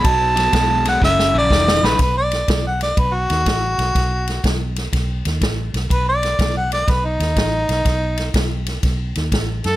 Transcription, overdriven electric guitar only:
X:1
M:4/4
L:1/8
Q:"Swing" 1/4=123
K:Bmix
V:1 name="Overdriven electric guitar" clef=bass
[B,,F,] [B,,F,] [B,,G,] [B,,G,] [F,,C,] [F,,C,] [F,,D,] [F,,D,] | z8 | z8 | z8 |
z8 |]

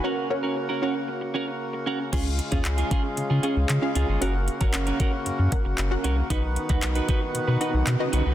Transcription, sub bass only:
X:1
M:4/4
L:1/16
Q:1/4=115
K:F#
V:1 name="Sub bass" clef=bass
z16 | C,,3 D,, C,,2 z2 C, C, z C,, C, z C,, =G,,, | F,,,3 G,,, F,,,2 z2 F,, F,, z F,,, F,,,2 ^B,,,2 | B,,,3 C,, B,,,2 z2 B,, B,, z B,,, B,, z B,,, ^B,,, |]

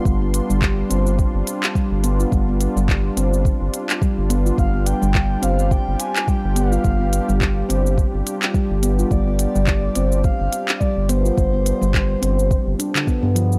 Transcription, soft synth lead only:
X:1
M:4/4
L:1/8
Q:"Swing 16ths" 1/4=106
K:none
V:1 name="Soft synth lead"
z8 | z8 | f g2 f g _a g f- | f3 z4 z |
d4 f2 d c- | c6 z2 |]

